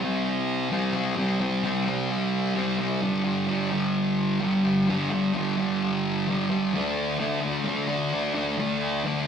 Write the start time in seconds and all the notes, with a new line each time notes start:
Already playing: C3
0.00 G3 C4
0.70 C3 G3 C4
0.93 G3 C4
1.16 C3 G3 C4
1.40 G3 C4
1.63 C3 G3 C4
1.86 G3 C4
2.55 C3 G3 C4
2.78 G3 C4
3.01 G2 D3 G3
3.24 D3 G3
3.47 G2 D3 G3
3.71 D3 G3
4.40 G2 D3 G3
4.64 D3 G3
4.87 G2 D3 G3
5.11 D3 G3
5.34 G2 D3 G3
5.57 D3 G3
6.27 G2 D3 G3
6.50 D3 G3
6.73 D3 A3 D4
7.19 D3 A3 D4
7.42 A3 D4
7.65 D3 A3 D4
7.87 A3 D4
8.34 A3 D4
8.57 D3 A3 D4
9.04 D3 A3 D4